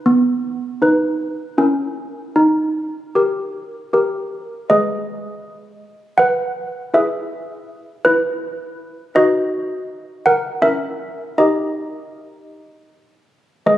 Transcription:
0.06 B3
0.82 D#4 B4
1.58 C#4 E4 A#4
2.36 D#4
3.15 G4 A#4
3.93 G4 A#4
4.70 G#3 G#4 B4 D#5
6.18 B4 F#5
6.94 E4 G#4 B4 E5
8.05 E4 B4
9.15 D#4 F#4 B4 D#5
10.26 A#4 F#5
10.62 C#4 E4 A#4 E5
11.38 D#4 G4 A#4 D#5
13.66 G#3 G#4 B4 D#5

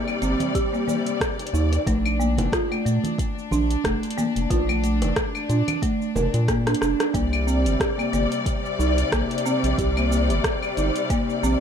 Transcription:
Already playing: C3 G3 D5
0.08 cabasa, claves
0.22 G1 C4, closed hi-hat, cabasa
0.40 closed hi-hat, high conga, cabasa
0.55 G4, kick, closed hi-hat, cabasa
0.73 A#3, cabasa
0.88 A#3, high bongo, high conga, cabasa
1.06 closed hi-hat, cabasa
1.21 kick, cross-stick, closed hi-hat, cabasa
1.39 closed hi-hat, high bongo, cabasa
1.47 closed hi-hat
1.53 D#2 D#4, cabasa
1.72 closed hi-hat, high bongo, cabasa
1.86 A#1 A3 D4, kick, closed hi-hat, high bongo, cabasa
2.06 cabasa, claves
2.20 A#3, cabasa
2.38 F1, closed hi-hat, high bongo, high conga, low conga, cabasa
2.52 F4, kick, cross-stick, closed hi-hat, cabasa
2.71 A3, cabasa, claves
2.86 A#2 A3, closed hi-hat, cabasa
3.04 closed hi-hat, high conga, cabasa
3.18 kick, closed hi-hat, cabasa
3.39 cabasa
3.51 A#1 D4, high conga, cabasa
3.71 closed hi-hat, cabasa
3.84 F1 A3, kick, cross-stick, closed hi-hat, cabasa
4.03 closed hi-hat, cabasa
4.11 closed hi-hat
4.18 A#3, high conga, cabasa
4.36 F1, closed hi-hat, cabasa
4.50 A#1 F4, kick, closed hi-hat, high bongo, cabasa
4.69 A3, high conga, cabasa, claves
4.84 A3, closed hi-hat, cabasa
5.02 F1, closed hi-hat, high bongo, high conga, cabasa
5.16 kick, cross-stick, closed hi-hat, cabasa
5.35 cabasa, claves
5.49 A#2 D4, closed hi-hat, cabasa
5.68 closed hi-hat, high conga, cabasa, claves
5.82 A3, kick, closed hi-hat, cabasa
6.02 cabasa
6.16 F1 A#4, high bongo, high conga, low conga, cabasa
6.34 A#2, closed hi-hat, cabasa
6.48 A#3, kick, cross-stick, closed hi-hat, cabasa
6.66 D4, cross-stick, closed hi-hat, high bongo, cabasa
6.75 closed hi-hat
6.81 F1 D4, cross-stick, cabasa
7.00 cross-stick, closed hi-hat, high bongo, cabasa
7.14 C2 C3 G3 A#3 D5, kick, closed hi-hat, cabasa
7.33 cabasa, claves
7.47 C4, cabasa
7.66 G1, closed hi-hat, cabasa
7.80 G4, kick, cross-stick, closed hi-hat, cabasa
7.98 A#3, cabasa, claves
8.13 G1 A#3, closed hi-hat, cabasa
8.32 closed hi-hat, cabasa
8.46 kick, closed hi-hat, cabasa
8.66 cabasa
8.79 C2 D#4, cabasa
8.98 closed hi-hat, cabasa
9.12 A#1 A#3, kick, cross-stick, closed hi-hat, cabasa
9.31 closed hi-hat, cabasa
9.38 closed hi-hat
9.46 C4, cabasa
9.63 A#1, closed hi-hat, cabasa
9.78 C2 G4, kick, closed hi-hat, cabasa
9.97 A#3, cabasa, claves
10.11 A#3, cabasa
10.30 G1, closed hi-hat, cabasa
10.44 kick, cross-stick, closed hi-hat, cabasa
10.62 cabasa, claves
10.77 G1 D#4, closed hi-hat, cabasa
10.96 closed hi-hat, cabasa
11.10 A#3, kick, closed hi-hat, cabasa
11.30 cabasa
11.43 A#1 C4, cabasa

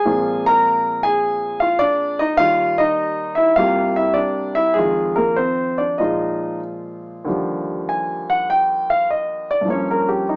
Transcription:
Already playing: G#4 G#5
0.05 A#2 F3 G#3 A#3 C4 F4
0.46 A#4 A#5
1.03 G#4 G#5
1.60 F4 F5
1.79 D4 D5
2.19 D#4 D#5
2.37 D#2 D#3 G3 F4 F5
2.78 D#4 D#5
3.35 E4 E5
3.56 C2 C3 A#3 F4 G4 F5
3.96 E4 E5
4.14 D4 D5
4.55 E4 E5
4.74 F2 D#3 G#3 G#4
4.78 F4
5.16 A#3 A#4
5.36 C4 C5
5.78 D4 D5
5.98 A#2 F3 G#3 D#4 F4 D#5
7.25 D#2 D3 G3
7.29 F3
7.89 G#5
8.30 F#5
8.50 G5
8.90 F5
9.10 D#5
9.51 D5
9.61 G2 F3
9.68 A#3 C#5
9.72 C#4
9.91 A#4
10.09 G4
10.29 D#4

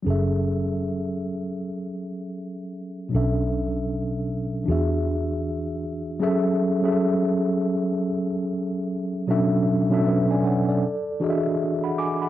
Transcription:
0.02 F#1 F#3 C#4 G#4
0.08 A4 E5
3.09 B2 F#3 C#4
3.13 B1 D4 A4 E5
4.64 E3 D4 F#4
4.68 E2 G#4 E5
6.20 F#3 C#4 G#4 A4 E5
6.82 F#3 C#4 G#4 A4 E5
9.27 B2 F#3 C#4 D4 A4 E5
9.90 B2 F#3 C#4 D4 A4 E5
10.06 B4 E5
10.31 D5 G#5
10.44 C#5 F#5
10.69 A4 D5
11.20 E3 D4 F#4 G#4 D#5
11.30 E5
11.84 F#5 B5
11.98 G#5 D6
12.22 F#5 B5

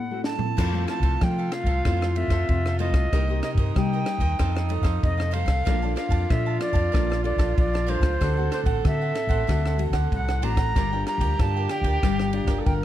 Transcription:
Already playing: A2 F#5
0.11 A3 C4 F#4
0.24 A5, snare
0.38 A3 C4 E4, floor tom
0.56 F2 F3 E4 F4 A4 C5 F5, kick, cross-stick, crash
0.73 A3 C4 A4 C5 F5
0.87 E4 A4 C5 F5 A5, cross-stick, ride
1.00 C2 C5 F5, kick, ride
1.04 A4
1.21 C3 F3 A3 C4 G5, kick, cross-stick, ride
1.38 A4 C5 F5
1.52 F5, muted cavaquinho stroke, cross-stick, ride
1.64 C2 C5 F5, kick, ride
1.68 A4
1.85 F2 F3 A3 C4 E4 A4 C5 F5, kick, cross-stick, ride
2.01 A4 C5 F5, cross-stick
2.11 F5
2.15 A3 C4 E5, muted cavaquinho stroke, ride
2.28 F2 C5, kick, cross-stick, ride
2.32 A4
2.49 F2 C3, kick, ride
2.66 A4 C5 F5, cross-stick
2.79 A3 C4 E4 A4 C5 D#5 F5, ride
2.91 C2 C5 F5, kick, cross-stick, ride
2.95 A4
3.13 C2 C3 A#3 D#4 G4 A#4 C5 D#5, kick, cross-stick, ride
3.29 A#3 D#4 G4 A#4 C5 D#5
3.43 D#4 A#4 C5 D#5, cross-stick, ride
3.55 G2 C5 D#5, kick, ride
3.59 A#4
3.75 C3 G3 A#3 D#4 G4 G5, kick, cross-stick, ride
3.93 A#4 C5 D#5
4.06 muted cavaquinho stroke, cross-stick, ride
4.18 D#2 A#4 C5 D#5, kick, ride
4.39 F2 F3 D#4 A4 C5 F5, kick, cross-stick, ride
4.55 A4 C5 F5, cross-stick
4.69 D#4 A4 C5, muted cavaquinho stroke, ride
4.81 F2 A4 C5 F5, kick, cross-stick, ride
5.03 F2 C3 D#5, kick, ride
5.18 A4 C5 F5, cross-stick
5.31 D#4 A4 C5 F5, ride
5.36 C5
5.45 C2 A4 C5 F5, kick, cross-stick, ride
5.65 A#1 A#3 D4 F4 A4 A#4 C5 D5 F5 A5, kick, cross-stick, ride
5.82 D4 A4 C5 D5 F5 A5
5.96 A#4 D5 F5 A5, cross-stick, ride
6.09 F2 D5 F5 A5, kick, ride
6.30 A#2 F3 D4 A4 C5 E5, kick, cross-stick, ride
6.46 D5 F5 A5
6.60 D5, muted cavaquinho stroke, cross-stick, ride
6.72 F2 D5 F5 A5, kick, ride
6.92 A#1 A#3 D4 A4 A#4 C5 D5 F5 A5, kick, cross-stick, ride
7.10 D5 F5 A5, cross-stick
7.24 D4 A4 C5 D5, muted cavaquinho stroke, ride
7.36 A#1 D5 F5 A5, kick, cross-stick, ride
7.57 A#1 F3 D5, kick, ride
7.74 D5 F5 A5, cross-stick
7.86 D4 A4 A#4 C5 D5 F5 A5, ride
8.00 C#2 D5 F5 A5, kick, cross-stick, ride
8.21 D2 D3 A3 C4 D4 F#4 A4 C5 D5 F#5, kick, cross-stick, ride
8.37 A3 C4 F#4 C5 D5 F#5
8.51 D4 C5 D5 F#5, cross-stick, ride
8.63 A1 C5 D5 F#5, kick, ride
8.84 A2 D3 A3 C4 F#4 E5, kick, cross-stick, ride
9.01 C5 D5 F#5
9.15 muted cavaquinho stroke, cross-stick, ride
9.27 A1 C5 D5 F#5, kick, ride
9.47 D2 D3 A3 C4 D4 F#4 C5 D5 F#5, kick, cross-stick, ride
9.65 C5 D5 F#5, cross-stick
9.78 A3 C4 F#4, muted cavaquinho stroke, ride
9.90 D2 C5 D5 F#5, kick, cross-stick, ride
10.12 C2 A2 F#5, kick, ride
10.28 C5 D5 F#5, cross-stick
10.42 A1 A3 C4 D4 F#4 C5 D5 F#5 A#5, ride
10.57 C5 F#5, kick, cross-stick, ride
10.75 G1 G3 D4 F4 G4 A#4 D5 G5, kick, cross-stick, ride
10.92 D4 F4 A#4 D5 G5
11.07 F4 A#4 D5 G5 A#5, cross-stick, ride
11.18 D2 D5 G5, kick, ride
11.22 A#4
11.39 G2 D3 D4 F4 A#4 A5, kick, cross-stick, ride
11.56 A#4 D5 G5
11.69 G5, muted cavaquinho stroke, cross-stick, ride
11.81 D2 G5, kick, ride
11.85 A#4 D5
12.03 G1 G3 D4 F4 A#4 D5 G5, kick, cross-stick, ride
12.19 A#4 D5 G5, cross-stick
12.33 D4 F4 A#4, muted cavaquinho stroke, ride
12.45 G1 A#4 D5 G5, kick, cross-stick, ride
12.59 A4
12.66 G1 D3 A#4 G5, kick, ride

